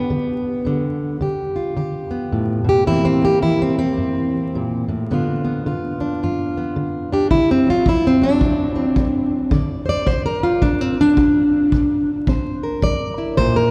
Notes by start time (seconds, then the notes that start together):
Already playing: B3
0.10 D3
0.65 G2 D3
1.21 D3 G4
1.56 F4
1.77 D3 G4
2.11 B3
2.32 A2
2.65 B2
2.69 G4
2.87 C3 E3 A#3 C4 E4
3.05 C4
3.22 A#3 G4
3.42 E3 E4
3.62 C4
3.79 C4
3.98 G2
4.55 A#2
4.89 A2
5.11 G2 D3 B3 D4 F4
5.45 B3
5.66 D3 F4
6.01 D4
6.23 G2 F4
6.57 B3
6.76 D3
7.12 D4 G4
7.30 D3 E4, kick
7.51 C4
7.66 F#3 F4
7.86 F#3 E4, kick
8.07 C4
8.22 F#3 D4
8.41 A2, kick
8.76 C4
8.96 F#3, kick
9.51 D3 D5, kick
9.86 C5 D5
10.06 F#4 C5, kick
10.26 A#4
10.43 F4
10.62 A2 D4, kick
10.81 C4
11.01 D4
11.17 F#4, kick
11.72 C3, kick
12.27 C4 C5, kick
12.63 A#4
12.82 G3 D5, kick
13.18 E4
13.37 A#2 C5, kick
13.56 A#4